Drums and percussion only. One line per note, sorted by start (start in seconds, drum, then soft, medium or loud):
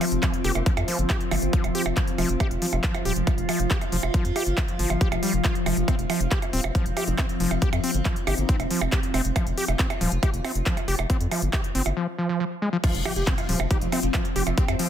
0.01 open hi-hat loud
0.01 percussion blips soft
0.12 closed hi-hat medium
0.23 kick loud
0.23 clap loud
0.23 closed hi-hat loud
0.23 percussion blips medium
0.34 closed hi-hat medium
0.44 open hi-hat medium
0.55 closed hi-hat medium
0.55 percussion blips soft
0.66 kick loud
0.66 closed hi-hat medium
0.77 closed hi-hat medium
0.77 percussion blips medium
0.88 open hi-hat loud
0.99 closed hi-hat medium
1.10 kick loud
1.10 clap loud
1.10 closed hi-hat medium
1.10 percussion blips soft
1.21 closed hi-hat medium
1.31 open hi-hat loud
1.31 percussion blips medium
1.42 closed hi-hat medium
1.53 kick loud
1.53 closed hi-hat medium
1.64 closed hi-hat medium
1.64 percussion blips soft
1.75 open hi-hat loud
1.86 percussion blips medium
1.97 kick loud
1.97 clap loud
1.97 closed hi-hat medium
2.08 closed hi-hat medium
2.18 open hi-hat loud
2.18 percussion blips soft
2.29 closed hi-hat medium
2.40 kick loud
2.40 closed hi-hat medium
2.40 percussion blips medium
2.51 closed hi-hat medium
2.62 open hi-hat loud
2.73 closed hi-hat medium
2.73 percussion blips soft
2.84 kick loud
2.84 clap loud
2.84 closed hi-hat medium
2.94 closed hi-hat medium
2.94 percussion blips medium
3.05 open hi-hat loud
3.16 closed hi-hat medium
3.27 kick loud
3.27 closed hi-hat medium
3.27 percussion blips soft
3.38 closed hi-hat medium
3.49 open hi-hat loud
3.49 percussion blips medium
3.60 closed hi-hat medium
3.71 kick loud
3.71 clap loud
3.71 closed hi-hat medium
3.81 closed hi-hat medium
3.81 percussion blips soft
3.92 open hi-hat loud
4.03 percussion blips medium
4.14 kick loud
4.14 closed hi-hat medium
4.25 closed hi-hat medium
4.36 open hi-hat loud
4.36 percussion blips soft
4.47 closed hi-hat soft
4.58 kick loud
4.58 clap loud
4.58 closed hi-hat medium
4.58 percussion blips medium
4.68 closed hi-hat medium
4.79 open hi-hat loud
4.90 closed hi-hat soft
4.90 percussion blips soft
5.01 kick loud
5.01 closed hi-hat medium
5.12 closed hi-hat medium
5.12 percussion blips medium
5.23 open hi-hat loud
5.34 closed hi-hat soft
5.44 kick loud
5.44 clap loud
5.44 closed hi-hat medium
5.44 percussion blips soft
5.55 closed hi-hat medium
5.66 open hi-hat loud
5.66 percussion blips medium
5.77 closed hi-hat soft
5.88 kick loud
5.88 closed hi-hat medium
5.88 percussion blips soft
5.99 closed hi-hat soft
6.10 open hi-hat loud
6.10 percussion blips medium
6.21 closed hi-hat soft
6.31 kick loud
6.31 clap loud
6.31 closed hi-hat medium
6.42 closed hi-hat medium
6.42 percussion blips soft
6.53 open hi-hat medium
6.64 closed hi-hat medium
6.64 percussion blips medium
6.75 kick loud
6.75 closed hi-hat medium
6.86 closed hi-hat medium
6.97 open hi-hat loud
6.97 percussion blips soft
7.08 closed hi-hat soft
7.18 kick loud
7.18 clap loud
7.18 closed hi-hat medium
7.18 percussion blips medium
7.29 closed hi-hat medium
7.40 open hi-hat medium
7.51 closed hi-hat medium
7.51 percussion blips soft
7.62 kick loud
7.62 closed hi-hat loud
7.73 closed hi-hat medium
7.73 percussion blips medium
7.84 open hi-hat loud
7.94 closed hi-hat medium
8.05 kick loud
8.05 clap loud
8.05 closed hi-hat medium
8.05 percussion blips soft
8.16 closed hi-hat medium
8.27 open hi-hat medium
8.27 percussion blips medium
8.38 closed hi-hat medium
8.49 kick loud
8.49 closed hi-hat medium
8.60 closed hi-hat medium
8.60 percussion blips soft
8.71 open hi-hat loud
8.81 percussion blips medium
8.92 kick loud
8.92 clap loud
8.92 closed hi-hat medium
9.03 closed hi-hat medium
9.14 open hi-hat medium
9.14 percussion blips soft
9.25 closed hi-hat medium
9.36 kick loud
9.36 closed hi-hat loud
9.36 percussion blips medium
9.47 closed hi-hat medium
9.58 open hi-hat loud
9.68 closed hi-hat medium
9.68 percussion blips soft
9.79 kick loud
9.79 clap loud
9.79 closed hi-hat medium
9.90 closed hi-hat medium
9.90 percussion blips medium
10.01 open hi-hat medium
10.12 closed hi-hat medium
10.23 kick loud
10.23 closed hi-hat loud
10.23 percussion blips soft
10.34 closed hi-hat medium
10.45 open hi-hat medium
10.45 percussion blips medium
10.55 closed hi-hat medium
10.66 kick loud
10.66 clap loud
10.66 closed hi-hat medium
10.77 closed hi-hat medium
10.77 percussion blips soft
10.88 open hi-hat medium
10.99 percussion blips medium
11.10 kick loud
11.10 closed hi-hat loud
11.21 closed hi-hat medium
11.31 open hi-hat loud
11.31 percussion blips soft
11.42 closed hi-hat medium
11.53 kick loud
11.53 clap loud
11.53 closed hi-hat loud
11.53 percussion blips medium
11.64 closed hi-hat medium
11.75 open hi-hat medium
11.86 closed hi-hat medium
11.86 percussion blips soft
12.84 kick loud
12.84 closed hi-hat loud
12.84 crash loud
12.84 percussion blips soft
12.95 closed hi-hat medium
13.05 open hi-hat loud
13.05 percussion blips medium
13.16 closed hi-hat medium
13.27 kick loud
13.27 clap loud
13.27 closed hi-hat loud
13.38 closed hi-hat medium
13.38 percussion blips soft
13.49 open hi-hat medium
13.60 percussion blips medium
13.71 kick loud
13.71 closed hi-hat loud
13.81 closed hi-hat medium
13.92 open hi-hat loud
13.92 percussion blips soft
14.03 closed hi-hat medium
14.14 kick loud
14.14 clap loud
14.14 closed hi-hat medium
14.14 percussion blips medium
14.25 closed hi-hat medium
14.36 open hi-hat medium
14.47 closed hi-hat medium
14.47 percussion blips soft
14.58 kick loud
14.58 closed hi-hat loud
14.68 closed hi-hat medium
14.68 percussion blips medium
14.79 open hi-hat loud